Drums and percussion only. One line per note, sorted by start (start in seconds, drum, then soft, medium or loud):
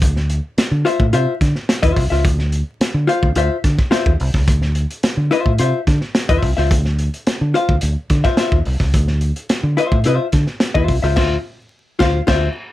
0.02 kick loud
0.02 closed hi-hat loud
0.16 snare soft
0.30 closed hi-hat medium
0.58 snare loud
0.58 closed hi-hat loud
0.86 closed hi-hat medium
1.00 kick loud
1.13 closed hi-hat loud
1.41 kick medium
1.41 snare soft
1.41 closed hi-hat medium
1.56 snare soft
1.69 snare loud
1.69 closed hi-hat loud
1.83 kick loud
1.83 closed hi-hat medium
1.96 kick loud
1.96 open hi-hat medium
2.12 snare soft
2.25 kick loud
2.25 closed hi-hat loud
2.39 snare soft
2.52 closed hi-hat medium
2.81 snare loud
2.81 closed hi-hat loud
3.09 closed hi-hat medium
3.23 kick loud
3.35 closed hi-hat loud
3.64 kick medium
3.64 snare soft
3.64 closed hi-hat medium
3.78 kick loud
3.78 snare soft
3.92 snare loud
3.92 closed hi-hat loud
4.06 kick loud
4.20 open hi-hat medium
4.34 kick medium
4.34 snare soft
4.48 kick loud
4.48 closed hi-hat loud
4.62 snare soft
4.75 closed hi-hat medium
4.91 closed hi-hat medium
5.03 snare loud
5.03 closed hi-hat loud
5.32 closed hi-hat medium
5.46 kick medium
5.58 closed hi-hat loud
5.87 kick medium
5.87 snare soft
5.87 closed hi-hat medium
6.01 snare soft
6.15 snare loud
6.15 closed hi-hat loud
6.29 kick loud
6.29 closed hi-hat medium
6.42 kick medium
6.42 open hi-hat medium
6.58 snare soft
6.71 kick loud
6.71 closed hi-hat loud
6.85 snare soft
6.99 closed hi-hat medium
7.14 closed hi-hat medium
7.27 snare loud
7.27 closed hi-hat loud
7.55 closed hi-hat medium
7.69 kick loud
7.81 closed hi-hat loud
8.10 kick medium
8.10 snare soft
8.10 closed hi-hat medium
8.24 kick medium
8.24 snare soft
8.37 snare loud
8.37 closed hi-hat loud
8.52 kick loud
8.65 open hi-hat medium
8.80 kick medium
8.80 snare soft
8.94 kick loud
8.94 closed hi-hat loud
9.08 snare soft
9.21 closed hi-hat medium
9.36 closed hi-hat medium
9.49 snare loud
9.49 closed hi-hat loud
9.78 closed hi-hat medium
9.92 kick loud
10.04 closed hi-hat loud
10.32 kick medium
10.32 snare soft
10.32 closed hi-hat medium
10.47 snare soft
10.60 snare loud
10.60 closed hi-hat medium
10.75 kick loud
10.88 kick loud
10.88 open hi-hat medium
11.03 snare soft
11.17 kick loud
11.17 snare loud
11.17 crash loud
12.00 kick loud
12.00 snare loud
12.28 kick loud
12.28 snare loud
12.28 crash medium